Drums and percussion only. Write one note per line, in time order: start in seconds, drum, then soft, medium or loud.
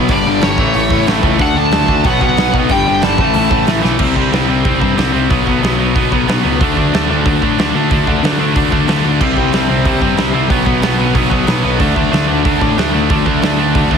0.09 kick loud
0.09 open hi-hat medium
0.42 snare loud
0.42 open hi-hat medium
0.58 kick loud
0.74 open hi-hat medium
0.90 kick medium
1.07 snare loud
1.07 open hi-hat medium
1.23 kick loud
1.39 kick loud
1.39 open hi-hat medium
1.71 snare loud
1.71 open hi-hat medium
1.88 kick medium
2.04 kick loud
2.04 open hi-hat medium
2.21 kick medium
2.37 snare loud
2.37 open hi-hat medium
2.54 kick medium
2.69 kick loud
2.69 open hi-hat medium
3.02 snare loud
3.02 open hi-hat medium
3.18 kick loud
3.34 open hi-hat medium
3.51 kick loud
3.67 snare loud
3.67 open hi-hat medium
3.84 snare medium
3.99 kick loud
3.99 crash loud
4.16 kick medium
4.33 snare loud
4.33 open hi-hat medium
4.65 kick loud
4.65 open hi-hat medium
4.82 kick medium
4.98 snare loud
4.98 open hi-hat medium
5.30 kick loud
5.30 open hi-hat medium
5.47 kick medium
5.63 snare loud
5.63 open hi-hat medium
5.96 kick loud
5.96 open hi-hat medium
6.12 kick medium
6.28 snare loud
6.28 open hi-hat medium
6.61 kick loud
6.61 open hi-hat medium
6.77 kick medium
6.94 snare loud
6.94 open hi-hat soft
7.26 kick loud
7.26 open hi-hat medium
7.42 kick medium
7.58 snare loud
7.58 open hi-hat medium
7.91 kick loud
7.91 open hi-hat medium
8.07 kick medium
8.24 snare loud
8.24 open hi-hat medium
8.56 kick loud
8.56 open hi-hat medium
8.72 kick medium
8.88 snare loud
8.88 open hi-hat medium
9.21 kick loud
9.21 crash medium
9.37 kick medium
9.53 snare loud
9.53 open hi-hat medium
9.85 kick loud
9.85 open hi-hat medium
10.02 kick medium
10.17 snare loud
10.17 open hi-hat medium
10.50 kick loud
10.50 open hi-hat medium
10.66 kick medium
10.82 snare loud
10.82 open hi-hat medium
11.15 kick loud
11.15 open hi-hat medium
11.31 kick medium
11.47 snare loud
11.47 open hi-hat medium
11.80 kick loud
11.80 open hi-hat medium
11.96 kick medium
12.13 snare loud
12.13 open hi-hat medium
12.45 kick loud
12.45 open hi-hat medium
12.61 kick medium
12.78 snare loud
12.78 open hi-hat medium
13.10 kick loud
13.10 open hi-hat medium
13.26 kick medium
13.42 snare loud
13.42 open hi-hat medium
13.75 kick loud
13.75 open hi-hat medium
13.91 kick medium